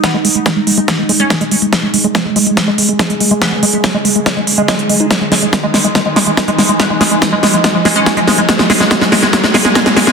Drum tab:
HH |x-oxx-oxx-oxxxox|x-oxx-oxx-oxxxox|x-oxx-oxx-o-xxox|x-oxx-oxx-oxxxox|
SD |o---o---o---o---|o---o---o---o---|o---o---o---o---|o-o-o-o-o-o-o-o-|
BD |o---o---o---o---|o---o---o---o---|o---o---o---o---|o---o---o---o---|

HH |x-oxx-oxx-oxxxox|x-o-x-o-x-oxxxox|
SD |o-o-o-o-o-o-o-o-|oooooooooooooooo|
BD |o---o---o---o---|o---o---o---o---|